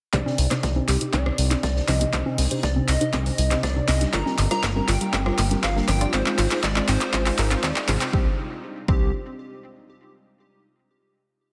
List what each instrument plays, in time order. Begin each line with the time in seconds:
0.13 analog synth bass C2, analog synth pad C3 C4 D#4, synth stab C3 D4 D#4 G4 C5, synth arpeggio sound C4, digital synth lead D5, kick, clap, closed hi-hat
0.26 synth stab C3 D4 D#4 G4 C5, snare, high conga
0.38 analog synth bass C2, synth arpeggio sound D#4, closed hi-hat, open hi-hat
0.51 synth stab C3 D4 D#4 G4 C5, synth arpeggio sound C4, cross-stick, snare, clap, closed hi-hat
0.63 analog synth bass C2, kick, snare, closed hi-hat
0.76 synth stab C3 D4 D#4 G4 C5, synth arpeggio sound D#4, high conga
0.88 analog synth bass C2, synth arpeggio sound C4, digital synth lead G4, snare, clap, closed hi-hat, open hi-hat
1.01 synth stab C3 D4 D#4 G4 C5, closed hi-hat
1.13 analog synth bass C2, synth stab C3 D4 D#4, synth arpeggio sound D#4, digital synth lead D5, kick, clap, closed hi-hat, high conga
1.26 synth stab C3 D4 D#4 G4 C5, synth arpeggio sound C4, cross-stick
1.38 analog synth bass C2, closed hi-hat, open hi-hat
1.51 synth stab C3 D4 D#4 G4 C5, synth arpeggio sound D#4, snare, clap, closed hi-hat, high conga
1.63 analog synth bass C2, synth arpeggio sound C4, digital synth lead D5, kick, snare, closed hi-hat
1.76 synth stab C3 D4 D#4 G4 C5, snare
1.87 analog synth bass C2, synth arpeggio sound D#4, digital synth lead D#5, cross-stick, clap, closed hi-hat, open hi-hat, high conga, low conga
2.01 synth stab C3 D4 D#4 G4 D#5, synth arpeggio sound C4, closed hi-hat
2.13 analog synth bass C2, synth stab C3 D4 D#4 G4 C5, kick, clap, closed hi-hat
2.26 synth stab C3 D4 D#4 G4 C5, synth arpeggio sound D#4, high conga
2.38 analog synth bass C2, synth arpeggio sound C4, open hi-hat
2.51 synth stab C3 D4 D#4 G4 C5, closed hi-hat
2.63 analog synth bass C2, synth arpeggio sound D#4, digital synth lead D5, kick, snare, closed hi-hat
2.76 synth stab C3 D4 D#4 G4 C5, synth arpeggio sound C4, high conga
2.88 analog synth bass C2, digital synth lead D#5, clap, closed hi-hat, open hi-hat
3.01 synth stab C3 D4 D#4 G4 C5, synth arpeggio sound D#4, closed hi-hat
3.13 analog synth bass C2, synth stab C3 D4 D#4 G4, synth arpeggio sound C4, kick, clap, closed hi-hat, high conga
3.26 synth stab C3 D4 D#4 G4 C5, open hi-hat
3.38 analog synth bass C2, synth arpeggio sound D#4, closed hi-hat, open hi-hat
3.51 synth stab C3 D4 D#4 G4 C5, synth arpeggio sound C4, snare, clap, closed hi-hat, high conga
3.63 analog synth bass C2, digital synth lead D5, kick, cross-stick, snare, closed hi-hat
3.76 synth stab C3 D4 D#4 G4 C5, synth arpeggio sound D#4
3.88 analog synth bass C2, synth arpeggio sound C4, digital synth lead D#5, clap, closed hi-hat, open hi-hat, high conga
4.01 synth stab G3 D4 D#4 G4 D#5, snare, closed hi-hat
4.13 analog synth bass G1, analog synth pad G3 D4 F4 A#4, synth stab G3 D4 F4 G4 A#4, synth arpeggio sound F4, digital synth lead A#5, kick, clap, closed hi-hat
4.26 synth stab G3 D4 F4 G4 A#4, synth arpeggio sound A#3, snare, high conga
4.38 analog synth bass G1, clap, closed hi-hat, open hi-hat
4.51 synth stab G3 D4 F4 G4 A#4, synth arpeggio sound F4, digital synth lead A#5, cross-stick, snare, closed hi-hat
4.63 analog synth bass G1, synth arpeggio sound A#3, kick, snare, clap, closed hi-hat
4.76 synth stab G3 D4 F4 G4 A#4, high conga
4.88 analog synth bass G1, synth arpeggio sound F4, digital synth lead G5, snare, clap, closed hi-hat, open hi-hat
5.01 synth stab G3 D4 F4 G4 A#4, synth arpeggio sound A#3, closed hi-hat
5.13 analog synth bass G1, synth stab G3 D4 F4 G4 A#4, kick, clap, closed hi-hat, high conga
5.26 synth stab G3 D4 F4 G4 A#4, synth arpeggio sound F4, cross-stick
5.38 analog synth bass G1, synth arpeggio sound A#3, clap, closed hi-hat, open hi-hat
5.51 synth stab G3 D4 F4 G4 A#4, snare, closed hi-hat, high conga
5.63 analog synth bass G1, synth arpeggio sound F4, digital synth lead F5, kick, snare, clap, closed hi-hat
5.76 synth stab G3 D4 F4 G4 A#4, synth arpeggio sound A#3, snare
5.88 analog synth bass G1, digital synth lead G5, cross-stick, clap, closed hi-hat, open hi-hat, high conga, low conga
6.01 synth stab D4 F4 G4 D5, synth arpeggio sound F4, closed hi-hat
6.13 analog synth bass G#1, analog synth pad G#3 D#4, synth stab G#3 D#4 F4 G#4 C5, synth arpeggio sound C4, digital synth lead C5, kick, clap, closed hi-hat
6.26 synth stab G#3 D#4 F4 G#4 C5, clap, high conga
6.38 analog synth bass G#1, synth arpeggio sound F4, clap, open hi-hat
6.51 synth stab G#3 D#4 F4 G#4 C5, synth arpeggio sound C4, snare, clap, closed hi-hat
6.63 analog synth bass G#1, digital synth lead D5, kick, snare, clap, closed hi-hat
6.76 synth stab G#3 D#4 F4 G#4 C5, synth arpeggio sound F4, clap, high conga
6.88 analog synth bass G#1, synth arpeggio sound C4, digital synth lead C5, clap, closed hi-hat, open hi-hat
7.01 synth stab G#3 D#4 F4 G#4 C5, clap, closed hi-hat
7.13 analog synth bass G#1, synth stab G#3 D#4 F4 G#4 C5, synth arpeggio sound F4, kick, clap, closed hi-hat, high conga
7.26 synth stab G#3 D#4 F4 G#4 C5, synth arpeggio sound C4, clap, open hi-hat
7.38 analog synth bass G#1, synth stab G#3 D#4 F4 G#4 A#4, clap, closed hi-hat, open hi-hat
7.50 synth arpeggio sound F4, snare, clap, closed hi-hat, high conga
7.63 analog synth bass D#2, synth stab G#3 D#4 F4 G#4 D5, synth arpeggio sound C4, kick, cross-stick, snare, clap, closed hi-hat
7.76 clap
7.88 analog synth bass G#1, synth stab C3 D#4 F4 G#4 C5, synth arpeggio sound F4, clap, closed hi-hat, open hi-hat, high conga
8.01 synth arpeggio sound C4, clap, closed hi-hat
8.13 analog synth bass C2, synth arpeggio sound C4, synth stab D4 D#4 G4 C5, digital synth lead G4, kick
8.88 analog synth bass C2, synth arpeggio sound C4, synth stab D4 D#4 G4 C5, digital synth lead G4, kick